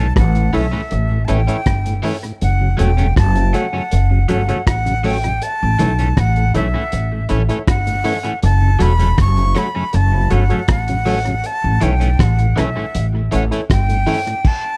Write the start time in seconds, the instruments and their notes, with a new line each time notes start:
Already playing: upright bass B1, flute A5
0.16 upright bass A1, flute F#5, kick, cross-stick, closed hi-hat
0.35 tonewheel organ A2, closed hi-hat
0.53 upright bass B1, tonewheel organ E3 A3 C#4, clean electric guitar E3 A3 C#4, synth stab E4 A4 C#5, flute E5, open hi-hat
0.71 tonewheel organ A2, clean electric guitar E3 A3 C#4
0.91 upright bass A1, closed hi-hat
1.10 tonewheel organ A2
1.25 clean electric guitar E3 A3, tonewheel organ E3 A3 C#4, synth stab E4 A4, flute A5, closed hi-hat
1.29 upright bass A1, clean electric guitar C#4, synth stab C#5, flute G5
1.47 tonewheel organ A2, clean electric guitar E3 A3 C#4, synth stab E4 A4 C#5, closed hi-hat
1.66 upright bass G1, kick, cross-stick, closed hi-hat
1.86 tonewheel organ A2, closed hi-hat
2.03 clean electric guitar E3 A3 C#4, tonewheel organ E3 A3 C#4, synth stab E4 A4 C#5, open hi-hat
2.24 tonewheel organ A2, closed hi-hat
2.41 upright bass F#1, flute F#5, closed hi-hat
2.61 tonewheel organ F#2 C#3
2.77 upright bass E1, clean electric guitar F#3 A3 C#4, tonewheel organ F#3 A3 C#4, synth stab F#4 A4 C#5, flute G5, closed hi-hat
2.97 tonewheel organ F#2 C#3, clean electric guitar F#3 A3 C#4, closed hi-hat
3.16 upright bass F#1, flute A5, kick, cross-stick, closed hi-hat
3.35 tonewheel organ F#2 C#3, closed hi-hat
3.53 tonewheel organ F#3 A3 C#4, clean electric guitar F#3 A3 C#4, synth stab F#4 A4 C#5, flute F#5, closed hi-hat
3.72 tonewheel organ F#2 C#3, clean electric guitar F#3 A3 C#4
3.91 upright bass F#1, closed hi-hat
4.11 tonewheel organ F#2 C#3
4.28 upright bass G1, tonewheel organ F#3 A3 C#4, clean electric guitar F#3 A3 C#4, synth stab F#4 A4 C#5, flute F#5, closed hi-hat
4.48 tonewheel organ F#2 C#3, clean electric guitar F#3 A3 C#4, synth stab F#4 A4 C#5, closed hi-hat
4.67 upright bass A1, flute F#5, kick, cross-stick, closed hi-hat
4.86 tonewheel organ F#2 C#3, closed hi-hat
5.04 clean electric guitar F#3 A3 C#4, tonewheel organ F#3 A3 C#4, synth stab F#4 A4 C#5, flute G5, open hi-hat
5.24 tonewheel organ F#2 C#3, closed hi-hat
5.42 flute A5, closed hi-hat
5.62 upright bass A1, tonewheel organ A2
5.79 upright bass B1, clean electric guitar E3 A3 C#4, tonewheel organ E3 A3 C#4, synth stab E4 A4 C#5, closed hi-hat
5.99 tonewheel organ A2, clean electric guitar E3 A3 C#4, closed hi-hat
6.17 upright bass A1, flute F#5, kick, cross-stick, closed hi-hat
6.36 tonewheel organ A2, closed hi-hat
6.54 upright bass B1, tonewheel organ E3 A3 C#4, clean electric guitar E3 A3 C#4, synth stab E4 A4 C#5, flute E5, closed hi-hat
6.74 tonewheel organ A2, clean electric guitar E3 A3 C#4
6.92 upright bass A1, closed hi-hat
7.12 tonewheel organ A2
7.29 upright bass A1, tonewheel organ E3 A3 C#4, clean electric guitar E3 A3 C#4, synth stab E4 A4 C#5, closed hi-hat
7.49 tonewheel organ A2, clean electric guitar E3 A3 C#4, synth stab E4 A4 C#5, closed hi-hat
7.68 upright bass G1, flute F#5, kick, cross-stick, closed hi-hat
7.87 tonewheel organ A2, closed hi-hat
8.04 tonewheel organ E3 A3 C#4, clean electric guitar E3 A3 C#4, synth stab E4 A4 C#5, open hi-hat
8.23 tonewheel organ A2, clean electric guitar E3 A3 C#4, closed hi-hat
8.43 upright bass F#1, flute A5, closed hi-hat
8.62 tonewheel organ F#2 C#3
8.79 upright bass E1, clean electric guitar F#3 A3 C#4, tonewheel organ F#3 A3 C#4, synth stab F#4 A4 C#5, flute B5, closed hi-hat
8.99 tonewheel organ F#2 C#3, clean electric guitar F#3 A3 C#4, closed hi-hat
9.18 upright bass F#1, flute C#6, kick, cross-stick, closed hi-hat
9.37 tonewheel organ F#2 C#3, closed hi-hat
9.55 clean electric guitar F#3 A3 C#4, tonewheel organ F#3 A3 C#4, synth stab F#4 A4 C#5, flute B5, cross-stick, closed hi-hat
9.75 tonewheel organ F#2 C#3, clean electric guitar F#3 A3 C#4
9.93 upright bass F#1, flute A5, closed hi-hat
10.14 tonewheel organ F#2 C#3
10.30 upright bass G1, clean electric guitar F#3 A3 C#4, tonewheel organ F#3 A3 C#4, synth stab F#4 A4 C#5, flute F#5, closed hi-hat
10.49 tonewheel organ F#2 C#3, clean electric guitar F#3 A3 C#4, synth stab F#4 A4 C#5, closed hi-hat
10.68 upright bass A1, flute F#5, kick, cross-stick, closed hi-hat
10.88 tonewheel organ F#2 C#3, closed hi-hat
11.05 clean electric guitar F#3 A3 C#4, tonewheel organ F#3 A3 C#4, synth stab F#4 A4 C#5, open hi-hat
11.26 tonewheel organ F#2 C#3, closed hi-hat
11.44 flute A5, closed hi-hat
11.64 upright bass A1, tonewheel organ A2
11.81 upright bass B1, clean electric guitar E3 A3 C#4, tonewheel organ E3 A3 C#4, synth stab E4 A4 C#5, flute G5, closed hi-hat
12.00 tonewheel organ A2, clean electric guitar E3 A3 C#4, closed hi-hat
12.19 upright bass A1, flute F#5, kick, cross-stick, closed hi-hat
12.39 tonewheel organ A2, closed hi-hat
12.56 upright bass B1, clean electric guitar E3 A3 C#4, tonewheel organ E3 A3 C#4, synth stab E4 A4 C#5, flute E5, cross-stick, closed hi-hat
12.76 tonewheel organ A2, clean electric guitar E3 A3 C#4
12.95 upright bass A1, closed hi-hat
13.14 tonewheel organ A2
13.31 upright bass A1, clean electric guitar E3 A3 C#4, tonewheel organ E3 A3 C#4, synth stab E4 A4 C#5, flute F#5, closed hi-hat
13.51 tonewheel organ A2, clean electric guitar E3 A3 C#4, synth stab E4 A4 C#5, closed hi-hat
13.70 upright bass G1, flute G5, kick, cross-stick, closed hi-hat
13.89 tonewheel organ A2, closed hi-hat
14.06 clean electric guitar E3 A3 C#4, tonewheel organ E3 A3 C#4, synth stab E4 A4 C#5, open hi-hat
14.27 tonewheel organ A2, closed hi-hat
14.45 flute A5, kick, crash